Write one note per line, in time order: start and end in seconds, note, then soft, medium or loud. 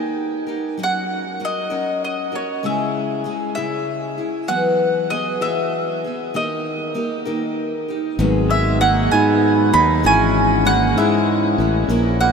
0.00 0.48 D#3 soft
0.00 0.48 A#3 medium
0.00 0.48 D#4 medium
0.00 0.47 G4 medium
0.00 0.45 A#4 medium
0.00 0.45 G5 medium
0.47 0.78 D#4 soft
0.47 0.79 G4 soft
0.47 0.78 A#4 soft
0.78 1.39 F#3 soft
0.78 1.40 C#4 medium
0.78 1.40 F#4 medium
0.78 1.40 A#4 medium
0.83 1.39 F#5 medium
1.40 1.70 F#3 soft
1.40 1.70 C#4 soft
1.40 1.69 F#4 medium
1.40 1.69 A#4 medium
1.45 2.03 D#5 medium
1.70 2.33 F#3 soft
1.70 2.32 C#4 soft
1.70 2.32 F#4 medium
1.70 2.31 A#4 medium
2.04 2.35 D#5 medium
2.32 2.63 C#4 soft
2.32 2.64 F#4 soft
2.32 2.63 A#4 soft
2.32 2.65 C#5 medium
2.63 3.26 C#3 medium
2.63 3.24 G#3 medium
2.63 3.24 C#4 medium
2.63 3.26 E4 medium
2.63 3.26 G#4 medium
2.63 3.23 E5 medium
3.24 3.56 G#3 soft
3.24 3.56 C#4 medium
3.24 3.56 E4 medium
3.24 3.55 G#4 medium
3.55 4.19 C#3 soft
3.55 4.19 G#3 soft
3.55 4.18 C#4 medium
3.55 4.17 E4 medium
3.55 4.16 G#4 medium
3.55 4.21 E5 medium
4.18 4.49 C#4 soft
4.18 4.49 E4 soft
4.18 4.48 G#4 soft
4.48 5.10 E3 medium
4.48 5.09 F#3 medium
4.48 5.10 B3 medium
4.48 5.10 F#4 medium
4.48 5.11 G#4 medium
4.48 5.07 F#5 medium
5.10 5.41 F#3 medium
5.10 5.41 B3 medium
5.10 5.40 F#4 medium
5.10 5.40 G#4 medium
5.10 5.39 D#5 medium
5.41 6.04 E3 medium
5.41 6.04 F#3 medium
5.41 6.04 B3 medium
5.41 6.03 F#4 medium
5.41 6.03 G#4 medium
5.41 6.30 E5 medium
6.04 6.34 B3 soft
6.04 6.34 F#4 soft
6.04 6.35 G#4 soft
6.34 6.96 D#3 medium
6.34 6.93 A#3 medium
6.34 6.94 D#4 medium
6.34 6.95 G4 medium
6.34 6.95 A#4 medium
6.34 7.55 D#5 medium
6.94 7.26 A#3 soft
6.94 7.26 D#4 medium
6.94 7.25 G4 medium
6.94 7.24 A#4 medium
7.25 7.89 D#3 soft
7.25 7.89 A#3 medium
7.25 7.88 D#4 medium
7.25 7.88 G4 medium
7.25 7.87 A#4 medium
7.88 8.20 D#4 soft
7.88 8.20 G4 soft
7.88 8.19 A#4 soft
8.19 9.08 G#1 loud
8.19 8.81 G#2 medium
8.19 8.81 D#3 medium
8.19 8.79 F#3 medium
8.19 11.87 G#3 medium
8.19 8.81 B3 medium
8.19 10.03 F#4 medium
8.19 8.83 G#4 medium
8.19 10.03 G#4 medium
8.50 8.79 G#3 medium
8.50 8.80 E5 medium
8.80 9.12 F#3 medium
8.80 9.10 A#3 medium
8.80 9.11 D#4 medium
8.80 9.12 G#4 medium
8.80 9.11 F#5 medium
9.11 9.71 G#2 medium
9.11 9.75 G#2 medium
9.11 9.75 D#3 medium
9.11 9.74 F#3 medium
9.11 9.73 B3 medium
9.11 9.72 D#4 medium
9.11 9.71 G#4 medium
9.11 9.73 G#5 medium
9.72 10.03 D#2 loud
9.72 10.04 F#3 soft
9.72 10.05 B3 soft
9.72 10.04 D#4 soft
9.72 10.04 G#4 medium
9.72 10.05 B5 loud
10.03 10.93 G#1 loud
10.03 10.65 G#2 medium
10.03 10.98 E3 medium
10.03 10.64 G#3 medium
10.03 12.32 C#4 medium
10.03 10.65 C#4 medium
10.03 10.66 E4 medium
10.03 11.88 E4 medium
10.03 10.66 G#4 medium
10.03 10.66 G#5 medium
10.65 10.96 G#3 medium
10.65 10.96 A#3 medium
10.65 10.97 C#4 medium
10.65 10.97 E4 medium
10.65 10.97 G#4 medium
10.65 10.98 F#5 loud
10.96 11.55 G#2 medium
10.96 11.59 G#2 medium
10.96 11.59 E3 medium
10.96 11.60 G#3 medium
10.96 11.59 C#4 medium
10.96 11.59 E4 medium
10.96 11.58 G#4 medium
10.96 11.62 E5 medium
11.58 11.88 A1 medium
11.58 11.89 G#3 soft
11.58 11.89 C#4 soft
11.58 11.89 E4 medium
11.58 11.90 G#4 soft
11.89 12.32 A#1 medium
11.89 12.32 E3 medium
11.89 12.32 A#3 medium
11.89 12.32 C#4 medium
11.89 12.32 E4 loud
11.89 12.32 A#4 loud
12.21 12.32 A#3 medium
12.21 12.32 F#5 medium